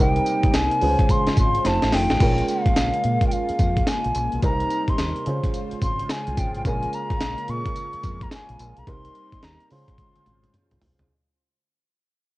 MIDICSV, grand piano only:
0, 0, Header, 1, 2, 480
1, 0, Start_track
1, 0, Tempo, 555556
1, 1905, Time_signature, 4, 2, 24, 8
1, 10689, End_track
2, 0, Start_track
2, 0, Title_t, "Grand piano"
2, 0, Program_c, 0, 0
2, 0, Note_on_c, 0, 55, 69
2, 0, Note_on_c, 0, 60, 61
2, 0, Note_on_c, 0, 63, 64
2, 0, Note_on_c, 0, 70, 78
2, 171, Control_c, 0, 64, 127
2, 701, Note_on_c, 0, 56, 68
2, 704, Note_off_c, 0, 55, 0
2, 706, Note_off_c, 0, 60, 0
2, 706, Note_on_c, 0, 61, 64
2, 708, Note_off_c, 0, 63, 0
2, 709, Note_off_c, 0, 70, 0
2, 709, Note_on_c, 0, 65, 67
2, 713, Note_on_c, 0, 71, 61
2, 716, Control_c, 0, 64, 0
2, 769, Note_on_c, 0, 72, 77
2, 780, Note_off_c, 0, 71, 0
2, 877, Control_c, 0, 64, 127
2, 1417, Note_off_c, 0, 65, 0
2, 1421, Note_off_c, 0, 72, 0
2, 1423, Note_off_c, 0, 56, 0
2, 1423, Note_on_c, 0, 57, 65
2, 1425, Note_off_c, 0, 61, 0
2, 1428, Note_on_c, 0, 63, 60
2, 1430, Note_on_c, 0, 65, 64
2, 1433, Note_on_c, 0, 72, 72
2, 1437, Control_c, 0, 64, 0
2, 1599, Control_c, 0, 64, 127
2, 1898, Note_on_c, 0, 56, 67
2, 1900, Note_off_c, 0, 65, 0
2, 1904, Note_off_c, 0, 57, 0
2, 1905, Note_on_c, 0, 61, 65
2, 1906, Note_off_c, 0, 63, 0
2, 1909, Note_off_c, 0, 72, 0
2, 1913, Note_on_c, 0, 65, 61
2, 1915, Control_c, 0, 64, 0
2, 1920, Note_on_c, 0, 70, 72
2, 2042, Control_c, 0, 64, 127
2, 3787, Note_off_c, 0, 56, 0
2, 3791, Note_off_c, 0, 61, 0
2, 3794, Note_off_c, 0, 65, 0
2, 3798, Note_off_c, 0, 70, 0
2, 3824, Note_on_c, 0, 55, 68
2, 3829, Note_on_c, 0, 60, 63
2, 3831, Note_on_c, 0, 63, 63
2, 3835, Note_on_c, 0, 70, 77
2, 3837, Control_c, 0, 64, 0
2, 3984, Control_c, 0, 64, 127
2, 4540, Note_on_c, 0, 56, 64
2, 4545, Note_off_c, 0, 55, 0
2, 4547, Note_off_c, 0, 60, 0
2, 4547, Note_on_c, 0, 61, 63
2, 4548, Note_off_c, 0, 63, 0
2, 4550, Note_off_c, 0, 70, 0
2, 4553, Note_on_c, 0, 65, 65
2, 4558, Control_c, 0, 64, 0
2, 4561, Note_on_c, 0, 72, 74
2, 4704, Control_c, 0, 64, 127
2, 5718, Note_off_c, 0, 56, 0
2, 5722, Note_off_c, 0, 61, 0
2, 5725, Note_off_c, 0, 65, 0
2, 5729, Note_off_c, 0, 72, 0
2, 5742, Note_on_c, 0, 56, 67
2, 5749, Note_on_c, 0, 61, 65
2, 5755, Note_on_c, 0, 65, 63
2, 5756, Control_c, 0, 64, 0
2, 5763, Note_on_c, 0, 70, 82
2, 5903, Control_c, 0, 64, 127
2, 7629, Note_off_c, 0, 56, 0
2, 7633, Note_off_c, 0, 61, 0
2, 7636, Note_off_c, 0, 65, 0
2, 7639, Note_off_c, 0, 70, 0
2, 7664, Note_on_c, 0, 55, 66
2, 7667, Note_on_c, 0, 60, 61
2, 7671, Note_on_c, 0, 63, 62
2, 7674, Control_c, 0, 64, 0
2, 7674, Note_on_c, 0, 70, 81
2, 7831, Control_c, 0, 64, 127
2, 8379, Note_on_c, 0, 56, 66
2, 8384, Note_off_c, 0, 55, 0
2, 8386, Note_off_c, 0, 60, 0
2, 8387, Note_on_c, 0, 61, 63
2, 8388, Note_off_c, 0, 63, 0
2, 8389, Note_off_c, 0, 70, 0
2, 8393, Note_on_c, 0, 65, 64
2, 8395, Control_c, 0, 64, 0
2, 8400, Note_on_c, 0, 72, 76
2, 8543, Control_c, 0, 64, 127
2, 9558, Note_off_c, 0, 56, 0
2, 9562, Note_off_c, 0, 61, 0
2, 9565, Note_off_c, 0, 65, 0
2, 9568, Note_off_c, 0, 72, 0
2, 9594, Control_c, 0, 64, 0
2, 10689, End_track
0, 0, End_of_file